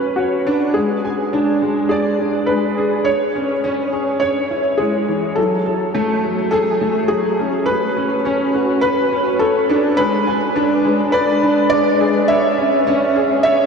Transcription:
Already playing: C#4 F#4 B4
0.16 F#4 C#5
0.47 D4
0.74 G#3 G#4
1.05 G#5
1.33 D4
1.62 G#3
1.89 G#4 D5
2.20 D4
2.46 G#3 B4
2.77 G#4
3.05 C#5
3.35 C#4
3.64 C#4
3.93 G#4
4.20 C#5
4.50 E4
4.78 G#3 G#4
5.08 E3
5.36 F#3 A4
5.66 A4
5.95 A3
6.23 F#3
6.51 G#4 A4
6.81 A3
7.08 F#3 G#4
7.39 C#4
7.66 B4
7.97 C#4
8.25 C#4
8.54 F#4
8.81 B4
9.12 C#4
9.39 A4 C#5
9.70 D4
9.97 G#3 B4
10.27 G#5
10.56 D4
10.85 G#3
11.12 B4 D5
11.43 D4
11.70 G#3 D5
12.00 G#4
12.28 C#5 E5
12.58 C#4
12.87 C#4
13.16 G#4
13.43 C#5 E5

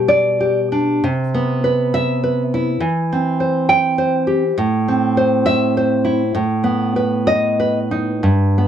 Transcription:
Already playing: B2 G3 G4
0.08 D5
0.40 G4
0.72 D4
1.04 C3
1.34 B3
1.64 B4
1.94 E5
2.24 B4
2.54 E4
2.80 E3
3.13 C4
3.40 C5
3.69 G5
3.98 C5
4.27 G4
4.58 A2
4.88 C4
5.17 C5
5.46 E5
5.77 C5
6.05 E4
6.35 A2
6.64 B3
6.96 B4
7.27 D#5
7.60 B4
7.91 D#4
8.23 G2
8.58 B3

